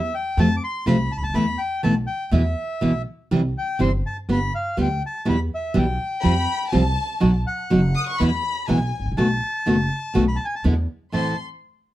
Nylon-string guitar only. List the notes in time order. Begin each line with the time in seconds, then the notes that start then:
0.38 C3 F3 A3 C4 F4
0.86 C3 F3 A3 C4 F4
1.35 E3 A3 B3 E4
1.83 E3 A3 B3 E4
2.31 B2 E3 G#3 B3 E4
2.81 B2 E3 G#3 B3 E4
3.31 C3 E3 G3 C4 E4
3.79 C3 E3 G3 C4 E4
4.29 G3 B3 F4
4.77 G3 B3 F4
5.25 B2 E3 G3 B3 E4
5.74 B2 E3 G3 B3 E4
6.23 F3 G3 C4 F4
6.72 F3 G3 C4 F4
7.20 B2 F#3 B3 D#4 F#4
7.70 B2 F#3 B3 D#4 F#4
8.20 B2 E3 G#3 B3 E4
8.68 B2 E3 G#3 B3 E4
9.17 B2 D#3 A3 B3 F#4
9.66 B2 D#3 A3 B3 F#4
10.14 B2 D#3 A3 B3 F#4
10.64 B2 D3 G#3 B3 E4
11.12 A2 E3 A3 C4 E4